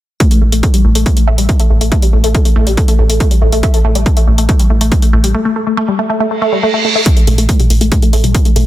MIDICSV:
0, 0, Header, 1, 5, 480
1, 0, Start_track
1, 0, Tempo, 428571
1, 226, Time_signature, 4, 2, 24, 8
1, 9706, End_track
2, 0, Start_track
2, 0, Title_t, "Synth arpeggio sound"
2, 0, Program_c, 0, 84
2, 226, Note_on_c, 0, 57, 84
2, 252, Note_off_c, 0, 57, 0
2, 347, Note_on_c, 0, 57, 76
2, 410, Note_off_c, 0, 57, 0
2, 466, Note_on_c, 0, 57, 73
2, 509, Note_off_c, 0, 57, 0
2, 587, Note_on_c, 0, 57, 73
2, 629, Note_off_c, 0, 57, 0
2, 706, Note_on_c, 0, 57, 100
2, 770, Note_off_c, 0, 57, 0
2, 827, Note_on_c, 0, 55, 78
2, 869, Note_off_c, 0, 55, 0
2, 947, Note_on_c, 0, 57, 76
2, 972, Note_off_c, 0, 57, 0
2, 1067, Note_on_c, 0, 57, 79
2, 1130, Note_off_c, 0, 57, 0
2, 1187, Note_on_c, 0, 57, 79
2, 1229, Note_off_c, 0, 57, 0
2, 1308, Note_on_c, 0, 57, 68
2, 1349, Note_off_c, 0, 57, 0
2, 1427, Note_on_c, 0, 57, 100
2, 1490, Note_off_c, 0, 57, 0
2, 1547, Note_on_c, 0, 55, 75
2, 1589, Note_off_c, 0, 55, 0
2, 1667, Note_on_c, 0, 57, 82
2, 1692, Note_off_c, 0, 57, 0
2, 1787, Note_on_c, 0, 57, 75
2, 1850, Note_off_c, 0, 57, 0
2, 1907, Note_on_c, 0, 57, 74
2, 1949, Note_off_c, 0, 57, 0
2, 2027, Note_on_c, 0, 57, 76
2, 2069, Note_off_c, 0, 57, 0
2, 2147, Note_on_c, 0, 57, 101
2, 2210, Note_off_c, 0, 57, 0
2, 2267, Note_on_c, 0, 55, 77
2, 2309, Note_off_c, 0, 55, 0
2, 2386, Note_on_c, 0, 57, 76
2, 2412, Note_off_c, 0, 57, 0
2, 2507, Note_on_c, 0, 57, 72
2, 2570, Note_off_c, 0, 57, 0
2, 2626, Note_on_c, 0, 57, 85
2, 2669, Note_off_c, 0, 57, 0
2, 2747, Note_on_c, 0, 57, 78
2, 2789, Note_off_c, 0, 57, 0
2, 2866, Note_on_c, 0, 57, 104
2, 2930, Note_off_c, 0, 57, 0
2, 2987, Note_on_c, 0, 55, 77
2, 3029, Note_off_c, 0, 55, 0
2, 3106, Note_on_c, 0, 57, 84
2, 3132, Note_off_c, 0, 57, 0
2, 3227, Note_on_c, 0, 57, 71
2, 3290, Note_off_c, 0, 57, 0
2, 3347, Note_on_c, 0, 57, 76
2, 3389, Note_off_c, 0, 57, 0
2, 3467, Note_on_c, 0, 57, 76
2, 3509, Note_off_c, 0, 57, 0
2, 3587, Note_on_c, 0, 57, 99
2, 3650, Note_off_c, 0, 57, 0
2, 3707, Note_on_c, 0, 55, 71
2, 3749, Note_off_c, 0, 55, 0
2, 3827, Note_on_c, 0, 57, 76
2, 3852, Note_off_c, 0, 57, 0
2, 3948, Note_on_c, 0, 57, 78
2, 4011, Note_off_c, 0, 57, 0
2, 4067, Note_on_c, 0, 57, 85
2, 4110, Note_off_c, 0, 57, 0
2, 4188, Note_on_c, 0, 57, 78
2, 4230, Note_off_c, 0, 57, 0
2, 4307, Note_on_c, 0, 57, 101
2, 4370, Note_off_c, 0, 57, 0
2, 4428, Note_on_c, 0, 55, 72
2, 4470, Note_off_c, 0, 55, 0
2, 4547, Note_on_c, 0, 57, 83
2, 4572, Note_off_c, 0, 57, 0
2, 4668, Note_on_c, 0, 57, 78
2, 4731, Note_off_c, 0, 57, 0
2, 4787, Note_on_c, 0, 57, 78
2, 4829, Note_off_c, 0, 57, 0
2, 4908, Note_on_c, 0, 57, 79
2, 4950, Note_off_c, 0, 57, 0
2, 5027, Note_on_c, 0, 57, 102
2, 5090, Note_off_c, 0, 57, 0
2, 5147, Note_on_c, 0, 55, 72
2, 5189, Note_off_c, 0, 55, 0
2, 5266, Note_on_c, 0, 57, 75
2, 5292, Note_off_c, 0, 57, 0
2, 5387, Note_on_c, 0, 57, 76
2, 5450, Note_off_c, 0, 57, 0
2, 5507, Note_on_c, 0, 57, 81
2, 5549, Note_off_c, 0, 57, 0
2, 5627, Note_on_c, 0, 57, 74
2, 5669, Note_off_c, 0, 57, 0
2, 5747, Note_on_c, 0, 57, 100
2, 5810, Note_off_c, 0, 57, 0
2, 5867, Note_on_c, 0, 55, 77
2, 5909, Note_off_c, 0, 55, 0
2, 5987, Note_on_c, 0, 57, 86
2, 6012, Note_off_c, 0, 57, 0
2, 6107, Note_on_c, 0, 57, 80
2, 6170, Note_off_c, 0, 57, 0
2, 6227, Note_on_c, 0, 57, 76
2, 6269, Note_off_c, 0, 57, 0
2, 6347, Note_on_c, 0, 57, 73
2, 6389, Note_off_c, 0, 57, 0
2, 6467, Note_on_c, 0, 57, 101
2, 6530, Note_off_c, 0, 57, 0
2, 6587, Note_on_c, 0, 55, 75
2, 6629, Note_off_c, 0, 55, 0
2, 6707, Note_on_c, 0, 57, 79
2, 6732, Note_off_c, 0, 57, 0
2, 6827, Note_on_c, 0, 57, 76
2, 6890, Note_off_c, 0, 57, 0
2, 6947, Note_on_c, 0, 57, 81
2, 6989, Note_off_c, 0, 57, 0
2, 7067, Note_on_c, 0, 57, 70
2, 7109, Note_off_c, 0, 57, 0
2, 7186, Note_on_c, 0, 57, 103
2, 7250, Note_off_c, 0, 57, 0
2, 7307, Note_on_c, 0, 55, 76
2, 7349, Note_off_c, 0, 55, 0
2, 7427, Note_on_c, 0, 57, 84
2, 7452, Note_off_c, 0, 57, 0
2, 7547, Note_on_c, 0, 57, 73
2, 7610, Note_off_c, 0, 57, 0
2, 7667, Note_on_c, 0, 57, 77
2, 7709, Note_off_c, 0, 57, 0
2, 7788, Note_on_c, 0, 57, 75
2, 7830, Note_off_c, 0, 57, 0
2, 7907, Note_on_c, 0, 57, 85
2, 7932, Note_off_c, 0, 57, 0
2, 8028, Note_on_c, 0, 57, 77
2, 8091, Note_off_c, 0, 57, 0
2, 8147, Note_on_c, 0, 57, 78
2, 8189, Note_off_c, 0, 57, 0
2, 8268, Note_on_c, 0, 57, 73
2, 8310, Note_off_c, 0, 57, 0
2, 8387, Note_on_c, 0, 57, 100
2, 8450, Note_off_c, 0, 57, 0
2, 8507, Note_on_c, 0, 55, 76
2, 8549, Note_off_c, 0, 55, 0
2, 8626, Note_on_c, 0, 57, 80
2, 8652, Note_off_c, 0, 57, 0
2, 8747, Note_on_c, 0, 57, 77
2, 8810, Note_off_c, 0, 57, 0
2, 8867, Note_on_c, 0, 57, 83
2, 8909, Note_off_c, 0, 57, 0
2, 8987, Note_on_c, 0, 57, 74
2, 9029, Note_off_c, 0, 57, 0
2, 9107, Note_on_c, 0, 57, 107
2, 9170, Note_off_c, 0, 57, 0
2, 9227, Note_on_c, 0, 55, 76
2, 9269, Note_off_c, 0, 55, 0
2, 9347, Note_on_c, 0, 57, 80
2, 9372, Note_off_c, 0, 57, 0
2, 9467, Note_on_c, 0, 57, 72
2, 9530, Note_off_c, 0, 57, 0
2, 9587, Note_on_c, 0, 57, 80
2, 9629, Note_off_c, 0, 57, 0
2, 9706, End_track
3, 0, Start_track
3, 0, Title_t, "Sub bass"
3, 0, Program_c, 1, 38
3, 467, Note_on_c, 1, 33, 93
3, 580, Note_off_c, 1, 33, 0
3, 587, Note_on_c, 1, 33, 77
3, 704, Note_off_c, 1, 33, 0
3, 947, Note_on_c, 1, 33, 95
3, 1060, Note_off_c, 1, 33, 0
3, 1067, Note_on_c, 1, 33, 80
3, 1184, Note_off_c, 1, 33, 0
3, 1427, Note_on_c, 1, 33, 103
3, 1541, Note_off_c, 1, 33, 0
3, 1547, Note_on_c, 1, 33, 83
3, 1664, Note_off_c, 1, 33, 0
3, 1907, Note_on_c, 1, 33, 99
3, 2021, Note_off_c, 1, 33, 0
3, 2028, Note_on_c, 1, 33, 78
3, 2145, Note_off_c, 1, 33, 0
3, 2387, Note_on_c, 1, 33, 97
3, 2501, Note_off_c, 1, 33, 0
3, 2507, Note_on_c, 1, 33, 79
3, 2624, Note_off_c, 1, 33, 0
3, 2867, Note_on_c, 1, 33, 96
3, 2981, Note_off_c, 1, 33, 0
3, 2987, Note_on_c, 1, 33, 80
3, 3105, Note_off_c, 1, 33, 0
3, 3347, Note_on_c, 1, 33, 96
3, 3461, Note_off_c, 1, 33, 0
3, 3468, Note_on_c, 1, 33, 81
3, 3584, Note_off_c, 1, 33, 0
3, 3827, Note_on_c, 1, 33, 101
3, 3940, Note_off_c, 1, 33, 0
3, 3947, Note_on_c, 1, 33, 76
3, 4064, Note_off_c, 1, 33, 0
3, 4307, Note_on_c, 1, 33, 101
3, 4420, Note_off_c, 1, 33, 0
3, 4427, Note_on_c, 1, 33, 82
3, 4544, Note_off_c, 1, 33, 0
3, 4786, Note_on_c, 1, 33, 94
3, 4900, Note_off_c, 1, 33, 0
3, 4907, Note_on_c, 1, 33, 77
3, 5024, Note_off_c, 1, 33, 0
3, 5266, Note_on_c, 1, 33, 97
3, 5380, Note_off_c, 1, 33, 0
3, 5387, Note_on_c, 1, 33, 84
3, 5504, Note_off_c, 1, 33, 0
3, 5746, Note_on_c, 1, 33, 101
3, 5860, Note_off_c, 1, 33, 0
3, 5867, Note_on_c, 1, 33, 79
3, 5984, Note_off_c, 1, 33, 0
3, 8147, Note_on_c, 1, 33, 101
3, 8260, Note_off_c, 1, 33, 0
3, 8267, Note_on_c, 1, 33, 82
3, 8384, Note_off_c, 1, 33, 0
3, 8627, Note_on_c, 1, 33, 99
3, 8740, Note_off_c, 1, 33, 0
3, 8747, Note_on_c, 1, 33, 75
3, 8864, Note_off_c, 1, 33, 0
3, 9107, Note_on_c, 1, 33, 98
3, 9221, Note_off_c, 1, 33, 0
3, 9228, Note_on_c, 1, 33, 79
3, 9345, Note_off_c, 1, 33, 0
3, 9587, Note_on_c, 1, 33, 101
3, 9701, Note_off_c, 1, 33, 0
3, 9706, End_track
4, 0, Start_track
4, 0, Title_t, "Reverse cymbal"
4, 0, Program_c, 2, 119
4, 6946, Note_on_c, 2, 60, 74
4, 7907, Note_off_c, 2, 60, 0
4, 9706, End_track
5, 0, Start_track
5, 0, Title_t, "Drums"
5, 226, Note_on_c, 9, 36, 117
5, 227, Note_on_c, 9, 42, 65
5, 338, Note_off_c, 9, 36, 0
5, 339, Note_off_c, 9, 42, 0
5, 347, Note_on_c, 9, 42, 65
5, 459, Note_off_c, 9, 42, 0
5, 587, Note_on_c, 9, 42, 62
5, 699, Note_off_c, 9, 42, 0
5, 707, Note_on_c, 9, 36, 113
5, 707, Note_on_c, 9, 42, 63
5, 819, Note_off_c, 9, 36, 0
5, 819, Note_off_c, 9, 42, 0
5, 827, Note_on_c, 9, 42, 70
5, 939, Note_off_c, 9, 42, 0
5, 1067, Note_on_c, 9, 42, 65
5, 1179, Note_off_c, 9, 42, 0
5, 1187, Note_on_c, 9, 36, 113
5, 1187, Note_on_c, 9, 42, 69
5, 1299, Note_off_c, 9, 36, 0
5, 1299, Note_off_c, 9, 42, 0
5, 1307, Note_on_c, 9, 42, 67
5, 1419, Note_off_c, 9, 42, 0
5, 1547, Note_on_c, 9, 42, 66
5, 1659, Note_off_c, 9, 42, 0
5, 1667, Note_on_c, 9, 36, 116
5, 1667, Note_on_c, 9, 42, 68
5, 1779, Note_off_c, 9, 36, 0
5, 1779, Note_off_c, 9, 42, 0
5, 1787, Note_on_c, 9, 42, 66
5, 1899, Note_off_c, 9, 42, 0
5, 2028, Note_on_c, 9, 42, 64
5, 2140, Note_off_c, 9, 42, 0
5, 2147, Note_on_c, 9, 36, 118
5, 2147, Note_on_c, 9, 42, 68
5, 2259, Note_off_c, 9, 36, 0
5, 2259, Note_off_c, 9, 42, 0
5, 2267, Note_on_c, 9, 42, 68
5, 2379, Note_off_c, 9, 42, 0
5, 2507, Note_on_c, 9, 42, 66
5, 2619, Note_off_c, 9, 42, 0
5, 2627, Note_on_c, 9, 36, 115
5, 2627, Note_on_c, 9, 42, 61
5, 2739, Note_off_c, 9, 36, 0
5, 2739, Note_off_c, 9, 42, 0
5, 2748, Note_on_c, 9, 42, 66
5, 2860, Note_off_c, 9, 42, 0
5, 2987, Note_on_c, 9, 42, 66
5, 3099, Note_off_c, 9, 42, 0
5, 3107, Note_on_c, 9, 36, 121
5, 3107, Note_on_c, 9, 42, 66
5, 3219, Note_off_c, 9, 36, 0
5, 3219, Note_off_c, 9, 42, 0
5, 3228, Note_on_c, 9, 42, 69
5, 3340, Note_off_c, 9, 42, 0
5, 3467, Note_on_c, 9, 42, 68
5, 3579, Note_off_c, 9, 42, 0
5, 3587, Note_on_c, 9, 36, 120
5, 3587, Note_on_c, 9, 42, 70
5, 3699, Note_off_c, 9, 36, 0
5, 3699, Note_off_c, 9, 42, 0
5, 3707, Note_on_c, 9, 42, 67
5, 3819, Note_off_c, 9, 42, 0
5, 3947, Note_on_c, 9, 42, 64
5, 4059, Note_off_c, 9, 42, 0
5, 4067, Note_on_c, 9, 36, 117
5, 4067, Note_on_c, 9, 42, 67
5, 4179, Note_off_c, 9, 36, 0
5, 4179, Note_off_c, 9, 42, 0
5, 4187, Note_on_c, 9, 42, 66
5, 4299, Note_off_c, 9, 42, 0
5, 4427, Note_on_c, 9, 42, 67
5, 4539, Note_off_c, 9, 42, 0
5, 4547, Note_on_c, 9, 36, 125
5, 4547, Note_on_c, 9, 42, 62
5, 4659, Note_off_c, 9, 36, 0
5, 4659, Note_off_c, 9, 42, 0
5, 4667, Note_on_c, 9, 42, 67
5, 4779, Note_off_c, 9, 42, 0
5, 4907, Note_on_c, 9, 42, 61
5, 5019, Note_off_c, 9, 42, 0
5, 5026, Note_on_c, 9, 42, 66
5, 5027, Note_on_c, 9, 36, 124
5, 5138, Note_off_c, 9, 42, 0
5, 5139, Note_off_c, 9, 36, 0
5, 5147, Note_on_c, 9, 42, 66
5, 5259, Note_off_c, 9, 42, 0
5, 5387, Note_on_c, 9, 42, 68
5, 5499, Note_off_c, 9, 42, 0
5, 5506, Note_on_c, 9, 36, 127
5, 5506, Note_on_c, 9, 42, 67
5, 5618, Note_off_c, 9, 36, 0
5, 5618, Note_off_c, 9, 42, 0
5, 5627, Note_on_c, 9, 42, 67
5, 5739, Note_off_c, 9, 42, 0
5, 5867, Note_on_c, 9, 42, 69
5, 5979, Note_off_c, 9, 42, 0
5, 7906, Note_on_c, 9, 42, 100
5, 7907, Note_on_c, 9, 36, 118
5, 8018, Note_off_c, 9, 42, 0
5, 8019, Note_off_c, 9, 36, 0
5, 8027, Note_on_c, 9, 42, 55
5, 8139, Note_off_c, 9, 42, 0
5, 8147, Note_on_c, 9, 45, 61
5, 8147, Note_on_c, 9, 46, 102
5, 8259, Note_off_c, 9, 45, 0
5, 8259, Note_off_c, 9, 46, 0
5, 8267, Note_on_c, 9, 42, 56
5, 8379, Note_off_c, 9, 42, 0
5, 8387, Note_on_c, 9, 36, 117
5, 8387, Note_on_c, 9, 42, 91
5, 8499, Note_off_c, 9, 36, 0
5, 8499, Note_off_c, 9, 42, 0
5, 8507, Note_on_c, 9, 42, 55
5, 8507, Note_on_c, 9, 45, 62
5, 8619, Note_off_c, 9, 42, 0
5, 8619, Note_off_c, 9, 45, 0
5, 8627, Note_on_c, 9, 46, 92
5, 8739, Note_off_c, 9, 46, 0
5, 8747, Note_on_c, 9, 42, 54
5, 8859, Note_off_c, 9, 42, 0
5, 8867, Note_on_c, 9, 36, 122
5, 8867, Note_on_c, 9, 42, 95
5, 8867, Note_on_c, 9, 45, 63
5, 8979, Note_off_c, 9, 36, 0
5, 8979, Note_off_c, 9, 42, 0
5, 8979, Note_off_c, 9, 45, 0
5, 8987, Note_on_c, 9, 42, 55
5, 9099, Note_off_c, 9, 42, 0
5, 9107, Note_on_c, 9, 46, 107
5, 9219, Note_off_c, 9, 46, 0
5, 9228, Note_on_c, 9, 42, 54
5, 9228, Note_on_c, 9, 45, 62
5, 9340, Note_off_c, 9, 42, 0
5, 9340, Note_off_c, 9, 45, 0
5, 9347, Note_on_c, 9, 36, 119
5, 9347, Note_on_c, 9, 42, 97
5, 9459, Note_off_c, 9, 36, 0
5, 9459, Note_off_c, 9, 42, 0
5, 9468, Note_on_c, 9, 42, 54
5, 9580, Note_off_c, 9, 42, 0
5, 9587, Note_on_c, 9, 45, 60
5, 9587, Note_on_c, 9, 46, 91
5, 9699, Note_off_c, 9, 45, 0
5, 9699, Note_off_c, 9, 46, 0
5, 9706, End_track
0, 0, End_of_file